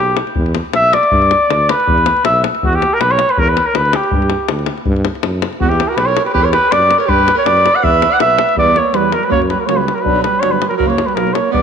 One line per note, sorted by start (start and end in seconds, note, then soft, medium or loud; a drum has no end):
0.00 0.19 B1 medium
0.00 0.18 G4 medium
0.17 davul high medium
0.27 davul high soft
0.35 0.57 E2 loud
0.35 davul low medium
0.46 davul high soft
0.55 davul high medium
0.73 0.95 B1 medium
0.73 0.95 E5 loud
0.73 davul high medium
0.93 1.72 D5 medium
0.93 davul high medium
1.03 davul high soft
1.12 1.32 G2 loud
1.12 davul low medium
1.22 davul high soft
1.31 davul high medium
1.50 1.70 D2 medium
1.50 davul high medium
1.69 2.25 B4 medium
1.69 davul high medium
1.80 davul high soft
1.87 2.08 E2 loud
1.87 davul low loud
1.98 davul high soft
2.06 davul high medium
2.17 davul high soft
2.25 2.45 B1 medium
2.25 2.42 E5 medium
2.25 davul high medium
2.44 davul high medium
2.55 davul high soft
2.63 2.83 E2 medium
2.63 2.77 F#4 medium
2.63 davul low loud
2.73 2.95 G4 medium
2.73 davul high soft
2.82 davul high medium
2.94 3.02 A#4 medium
3.00 3.20 B1 medium
3.00 3.13 B4 medium
3.00 davul high medium
3.11 3.32 C#5 medium
3.11 davul high soft
3.19 davul high medium
3.29 3.41 B4 medium
3.29 davul high soft
3.38 3.58 E2 loud
3.38 3.50 A#4 medium
3.38 davul low loud
3.47 3.68 B4 medium
3.47 davul high soft
3.57 davul high medium
3.67 3.78 A#4 medium
3.74 3.95 D2 medium
3.74 3.97 B4 medium
3.74 davul high medium
3.85 davul high soft
3.93 4.50 G4 medium
3.93 davul high medium
4.03 davul high soft
4.11 4.33 G2 loud
4.11 davul low loud
4.22 davul high soft
4.30 davul high medium
4.49 4.69 D2 medium
4.49 davul high medium
4.59 davul high soft
4.66 davul high medium
4.77 davul high soft
4.86 5.07 G2 loud
4.86 davul low loud
4.96 davul high soft
5.05 davul high medium
5.15 davul high soft
5.23 5.44 F#2 medium
5.23 davul high medium
5.42 davul high medium
5.53 davul high soft
5.60 5.81 E2 loud
5.60 5.71 B3 medium
5.60 5.71 F#4 medium
5.60 davul low loud
5.69 5.92 E4 medium
5.69 5.89 G4 medium
5.69 davul high soft
5.80 davul high medium
5.88 5.98 F#4 medium
5.88 5.98 A#4 medium
5.96 6.18 B1 medium
5.96 6.09 G4 medium
5.96 6.07 B4 medium
5.96 davul high medium
6.06 6.24 A#4 medium
6.06 6.25 C#5 medium
6.06 davul high soft
6.17 davul high medium
6.24 6.33 G4 medium
6.24 6.33 B4 medium
6.24 davul high soft
6.33 6.55 E2 loud
6.33 6.44 G4 loud
6.33 6.46 B4 medium
6.33 davul low medium
6.43 6.51 A#4 medium
6.43 6.53 C#5 medium
6.43 davul high soft
6.51 6.70 G4 medium
6.51 6.73 B4 loud
6.51 davul high medium
6.69 6.92 F#2 medium
6.69 6.97 B4 medium
6.69 6.98 D5 loud
6.69 davul high medium
6.82 davul high soft
6.91 davul high medium
6.98 7.07 A#4 medium
6.98 7.10 C#5 medium
6.98 davul high soft
7.05 7.29 G2 loud
7.05 7.34 G4 loud
7.05 7.37 B4 loud
7.05 davul low medium
7.18 davul high soft
7.28 davul high medium
7.34 7.45 A#4 medium
7.34 7.47 C#5 medium
7.44 7.66 F#2 medium
7.44 7.73 B4 medium
7.44 7.77 D5 loud
7.44 davul high medium
7.57 davul high soft
7.66 davul high medium
7.72 7.82 D5 medium
7.72 7.85 F#5 medium
7.72 davul high soft
7.81 8.03 E2 loud
7.81 8.12 B4 loud
7.81 8.14 E5 loud
7.81 davul low medium
7.94 davul high soft
8.02 davul high medium
8.10 8.19 D5 medium
8.10 8.21 F#5 medium
8.10 davul high soft
8.19 8.41 B1 medium
8.19 8.54 B4 medium
8.19 8.55 E5 medium
8.19 davul high medium
8.30 davul high soft
8.38 davul high medium
8.49 davul high soft
8.56 8.77 E2 loud
8.56 8.71 G3 medium
8.56 8.72 B3 medium
8.56 8.77 B3 medium
8.56 8.79 D5 loud
8.56 davul low medium
8.67 davul high soft
8.75 8.95 A#3 medium
8.75 8.97 C#5 medium
8.75 davul high medium
8.93 9.14 E2 medium
8.93 9.08 G3 medium
8.93 9.13 G3 medium
8.93 9.09 B3 medium
8.93 9.15 B4 medium
8.93 davul high medium
9.11 9.23 F#3 medium
9.11 9.26 A#4 medium
9.11 davul high medium
9.21 9.29 G3 medium
9.21 9.31 B4 medium
9.21 davul high soft
9.29 9.52 F#2 loud
9.29 9.45 F#3 medium
9.29 9.38 A#3 medium
9.29 9.45 A#3 medium
9.29 9.40 C#5 medium
9.29 davul low medium
9.42 davul high soft
9.49 9.61 G3 medium
9.49 9.62 B4 medium
9.49 davul high medium
9.59 9.68 F#3 medium
9.59 9.68 A#4 medium
9.66 9.89 C#2 medium
9.66 9.82 F#3 medium
9.66 9.79 A#3 medium
9.66 9.82 A#3 medium
9.66 9.78 C#5 medium
9.66 davul high medium
9.76 9.98 G3 medium
9.76 9.96 B4 medium
9.88 davul high medium
9.95 10.06 F#3 medium
9.95 10.02 A#4 medium
9.95 davul high soft
10.01 10.19 F#3 medium
10.01 10.19 D4 medium
10.01 10.22 B4 medium
10.05 10.26 B1 medium
10.05 10.24 F#3 medium
10.05 davul low medium
10.16 davul high soft
10.22 10.43 G3 medium
10.22 10.41 B4 medium
10.22 davul high medium
10.40 10.63 G1 medium
10.40 10.53 F#3 medium
10.40 10.57 F#3 medium
10.40 10.56 D4 medium
10.40 10.53 C#5 medium
10.40 davul high medium
10.51 10.69 G3 medium
10.51 10.68 B4 medium
10.62 davul high medium
10.69 10.77 F#3 medium
10.69 10.76 A#4 medium
10.69 davul high soft
10.77 11.00 F#1 medium
10.77 10.88 F#3 medium
10.77 10.94 F#3 medium
10.77 10.94 A#3 medium
10.77 10.89 A#4 medium
10.77 davul low medium
10.87 11.08 A#3 medium
10.87 11.08 C#5 medium
10.87 davul high soft
10.98 davul high medium
11.06 11.16 G3 medium
11.06 11.17 B4 medium
11.06 davul high soft
11.15 11.37 B1 medium
11.15 11.35 F#3 medium
11.15 11.30 F#3 medium
11.15 11.31 A#3 medium
11.15 11.35 A#4 medium
11.15 davul high medium
11.27 davul high soft
11.33 11.50 A#3 medium
11.33 11.52 C#5 medium
11.33 davul high medium
11.51 11.62 E1 medium
11.51 11.62 G3 medium
11.51 11.62 B3 medium
11.51 11.62 D5 medium
11.51 davul low medium